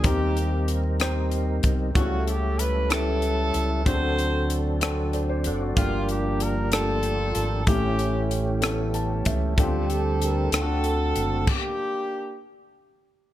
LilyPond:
<<
  \new Staff \with { instrumentName = "Horn section" } { \time 6/8 \key g \minor \tempo 4. = 63 << { g'4 r2 | fis'8 g'8 b'8 a'4. | c''4 r2 | f'8 g'8 bes'8 a'4. |
g'4 r2 | f'8 g'8 bes'8 a'4. | g'4. r4. | } \\ { <bes c'>4. r4. | a4. e'4. | <fis' a'>4. r4. | <bes d'>4. <d' f'>4. |
<cis' e'>4. r4. | <c' a'>4. <c' fis'>4. | <bes d'>4. r4. | } >> }
  \new Staff \with { instrumentName = "Grand piano" } { \time 6/8 \key g \minor << { r2. | r2. | r2 d''16 c''16 a'16 fis'16~ | fis'16 r2 r8. |
r2 a''8 e''8 | r2. | r2. | } \\ { <c' ees' g' bes'>4 r8 <c' ees' g' c''>4 r8 | <g b cis' e' a'>4 r8 <cis' e' g' b'>4 r8 | <c' d' fis' aes' a'>4 r8 <c' d' fis' a'>4 r8 | <a bes d' f' g'>4 r8 <a bes d' f' g'>4 r8 |
<a c' cis' e' g'>4 r8 <a b cis' e' a'>4 r8 | <a c' d' g'>4 r8 <a c' d' f' fis'>4 r8 | r2. | } >> }
  \new Staff \with { instrumentName = "Grand piano" } { \clef bass \time 6/8 \key g \minor ees4. r4. | cis4. r4. | d4. r4. | g,4. r4. |
a,4. r4. | d4. d4. | r2. | }
  \new Staff \with { instrumentName = "Tonewheel organ" } { \time 6/8 \key g \minor << { r2. | r2. | r2 <a' c''>16 d''16 <d'' fis''>16 d''16~ | d''16 r2 r8. |
r2. | r2. | r2. | } \\ { <g c' ees' bes'>2. | <g cis' e' a'>2. | <ees fis c' d' a'>2. | <f bes d' g'>2. |
<e a cis' g'>2. | <d g c' f' g'>4. <d a c' fis'>4. | r2. | } >> }
  \new Staff \with { instrumentName = "Fingered electric bass" } { \clef bass \time 6/8 \key g \minor ees,2~ ees,8 c,8 | cis,2~ cis,8 cis,8 | d,2~ d,8 fis,,8 | g,,2~ g,,8 aes,,8 |
a,,2~ a,,8 cis,8 | d,4. d,4 fis,,8 | r2. | }
  \new DrumStaff \with { instrumentName = "Drums" } \drummode { \time 6/8 <hh bd>8 hh8 hh8 <hh ss>8 hh8 <hh bd>8 | <hh bd>8 hh8 hh8 <hh ss>8 hh8 hh8 | <hh bd>8 hh8 hh8 <hh ss>8 hh8 hh8 | <hh bd>8 hh8 hh8 <hh ss>8 hh8 hh8 |
<hh bd>8 hh8 hh8 <hh ss>8 hh8 <hh bd>8 | <hh bd>8 hh8 hh8 <hh ss>8 hh8 hh8 | <cymc bd>4. r4. | }
>>